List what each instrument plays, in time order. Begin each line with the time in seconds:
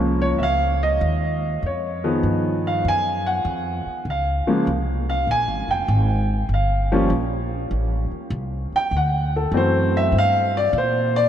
Already playing: upright bass C2, grand piano F3 G#3 A#3 C#4
0.22 grand piano C#5
0.38 upright bass C#2, grand piano E5
0.43 grand piano F5
0.83 grand piano D#5
1.01 upright bass D#2
1.62 upright bass F2, grand piano C#5
2.04 grand piano D#3 F3 B3 G#4
2.23 upright bass G2
2.67 grand piano F5
2.85 upright bass F#2, grand piano G#5
3.26 grand piano F#5
3.45 upright bass F2
3.86 muted upright bass stroke
4.05 upright bass C#2
4.10 grand piano F5
4.47 grand piano C#3 F3 G#3 A#3, muted upright bass stroke
4.67 upright bass C2
5.10 grand piano F5
5.27 upright bass A#1, grand piano G#5
5.47 upright bass G#1
5.68 upright bass F1, grand piano G5
5.88 upright bass G#1
6.49 upright bass G1
6.54 grand piano F5
6.92 grand piano F3 G3 A#3 C#4
7.10 upright bass A#1
7.71 upright bass A1
8.11 muted upright bass stroke
8.30 upright bass C2
8.72 grand piano G5, muted upright bass stroke
8.91 upright bass D2
8.97 grand piano F#5
9.36 grand piano A4
9.52 upright bass F#2, grand piano E3 F#3 A3 C4
9.57 grand piano C5
9.97 grand piano E5
10.12 upright bass G2
10.18 grand piano F5
10.57 grand piano D5
10.73 upright bass A#2
10.78 grand piano C5
11.16 grand piano D5